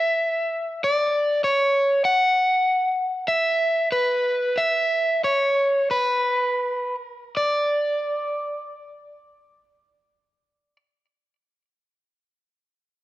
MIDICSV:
0, 0, Header, 1, 2, 480
1, 0, Start_track
1, 0, Key_signature, 2, "major"
1, 0, Tempo, 612245
1, 1626, Time_signature, 4, 2, 24, 8
1, 3080, Tempo, 662252
1, 4520, Tempo, 726392
1, 5480, Tempo, 759494
1, 9063, End_track
2, 0, Start_track
2, 0, Title_t, "Overdriven electric guitar"
2, 0, Program_c, 0, 29
2, 0, Note_on_c, 0, 76, 56
2, 656, Note_off_c, 0, 76, 0
2, 659, Note_on_c, 0, 74, 48
2, 1111, Note_off_c, 0, 74, 0
2, 1130, Note_on_c, 0, 73, 46
2, 1604, Note_off_c, 0, 73, 0
2, 1607, Note_on_c, 0, 78, 60
2, 2569, Note_off_c, 0, 78, 0
2, 2572, Note_on_c, 0, 76, 47
2, 3041, Note_off_c, 0, 76, 0
2, 3075, Note_on_c, 0, 71, 45
2, 3549, Note_on_c, 0, 76, 55
2, 3557, Note_off_c, 0, 71, 0
2, 4030, Note_off_c, 0, 76, 0
2, 4032, Note_on_c, 0, 73, 39
2, 4495, Note_off_c, 0, 73, 0
2, 4515, Note_on_c, 0, 71, 38
2, 5203, Note_off_c, 0, 71, 0
2, 5480, Note_on_c, 0, 74, 36
2, 7625, Note_off_c, 0, 74, 0
2, 9063, End_track
0, 0, End_of_file